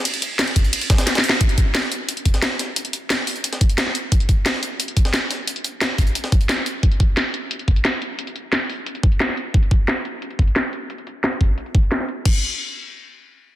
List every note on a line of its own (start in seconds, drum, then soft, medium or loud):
0.05 closed hi-hat loud
0.05 closed hi-hat medium
0.05 ride medium
0.14 closed hi-hat soft
0.22 closed hi-hat medium
0.39 snare loud
0.39 closed hi-hat loud
0.39 closed hi-hat medium
0.39 ride medium
0.47 closed hi-hat soft
0.56 kick medium
0.56 closed hi-hat medium
0.64 closed hi-hat soft
0.73 closed hi-hat loud
0.73 ride medium
0.81 closed hi-hat soft
0.90 kick loud
0.90 snare loud
0.90 closed hi-hat medium
0.98 snare loud
0.98 closed hi-hat soft
0.98 closed hi-hat medium
1.07 snare medium
1.07 snare loud
1.07 closed hi-hat loud
1.07 closed hi-hat medium
1.07 ride medium
1.15 snare loud
1.15 closed hi-hat medium
1.18 snare medium
1.24 closed hi-hat medium
1.24 open hi-hat medium
1.29 snare loud
1.41 kick loud
1.41 closed hi-hat medium
1.49 closed hi-hat soft
1.58 kick loud
1.58 closed hi-hat medium
1.75 snare loud
1.75 closed hi-hat medium
1.75 closed hi-hat loud
1.83 snare soft
1.92 closed hi-hat medium
2.09 closed hi-hat loud
2.09 closed hi-hat medium
2.17 closed hi-hat soft
2.25 kick medium
2.25 closed hi-hat medium
2.34 snare medium
2.34 closed hi-hat soft
2.42 snare loud
2.42 closed hi-hat loud
2.42 closed hi-hat medium
2.59 snare soft
2.59 closed hi-hat medium
2.76 closed hi-hat medium
2.85 closed hi-hat soft
2.93 closed hi-hat medium
3.10 snare loud
3.10 closed hi-hat loud
3.10 closed hi-hat medium
3.27 closed hi-hat medium
3.27 open hi-hat medium
3.36 closed hi-hat soft
3.44 closed hi-hat loud
3.44 closed hi-hat medium
3.53 snare soft
3.53 closed hi-hat soft
3.61 kick loud
3.61 closed hi-hat medium
3.70 closed hi-hat soft
3.78 snare loud
3.78 closed hi-hat loud
3.78 closed hi-hat medium
3.86 snare soft
3.95 closed hi-hat medium
4.12 kick loud
4.12 closed hi-hat medium
4.20 closed hi-hat soft
4.29 kick loud
4.29 closed hi-hat medium
4.46 snare loud
4.46 closed hi-hat medium
4.54 snare medium
4.63 closed hi-hat medium
4.80 closed hi-hat loud
4.80 closed hi-hat medium
4.88 closed hi-hat soft
4.97 kick medium
4.97 closed hi-hat medium
5.05 snare medium
5.05 closed hi-hat soft
5.14 snare loud
5.14 closed hi-hat loud
5.14 closed hi-hat medium
5.31 snare soft
5.31 closed hi-hat medium
5.47 closed hi-hat medium
5.56 closed hi-hat soft
5.64 closed hi-hat medium
5.81 snare loud
5.81 closed hi-hat loud
5.81 closed hi-hat medium
5.98 kick medium
5.98 closed hi-hat medium
5.98 open hi-hat medium
6.07 closed hi-hat soft
6.15 closed hi-hat medium
6.24 snare soft
6.24 closed hi-hat soft
6.32 kick loud
6.32 closed hi-hat medium
6.41 closed hi-hat soft
6.49 snare loud
6.49 closed hi-hat medium
6.58 snare soft
6.66 closed hi-hat medium
6.83 kick loud
6.83 closed hi-hat medium
6.92 closed hi-hat soft
7.00 kick loud
7.00 closed hi-hat medium
7.17 snare loud
7.17 closed hi-hat medium
7.34 closed hi-hat medium
7.51 closed hi-hat medium
7.59 closed hi-hat soft
7.68 kick medium
7.68 closed hi-hat medium
7.76 closed hi-hat soft
7.85 snare loud
7.85 closed hi-hat medium
8.02 closed hi-hat medium
8.19 closed hi-hat medium
8.27 closed hi-hat soft
8.36 closed hi-hat medium
8.53 snare loud
8.53 closed hi-hat medium
8.70 open hi-hat medium
8.86 closed hi-hat medium
8.95 closed hi-hat soft
9.03 kick loud
9.03 closed hi-hat medium
9.12 closed hi-hat soft
9.20 snare loud
9.20 closed hi-hat medium
9.29 snare soft
9.37 closed hi-hat medium
9.54 kick loud
9.54 closed hi-hat medium
9.63 closed hi-hat soft
9.71 kick loud
9.71 closed hi-hat medium
9.88 snare loud
9.88 closed hi-hat medium
10.05 closed hi-hat medium
10.22 closed hi-hat medium
10.31 closed hi-hat soft
10.39 kick medium
10.39 closed hi-hat medium
10.47 closed hi-hat soft
10.56 snare loud
10.56 closed hi-hat loud
10.73 closed hi-hat medium
10.90 closed hi-hat medium
10.98 closed hi-hat soft
11.07 closed hi-hat medium
11.24 snare loud
11.24 closed hi-hat loud
11.32 closed hi-hat soft
11.41 kick medium
11.41 open hi-hat medium
11.58 closed hi-hat medium
11.66 closed hi-hat soft
11.75 kick loud
11.75 closed hi-hat medium
11.83 closed hi-hat soft
11.92 snare loud
11.92 closed hi-hat medium
12.00 snare soft
12.09 closed hi-hat medium
12.25 kick loud
12.25 crash medium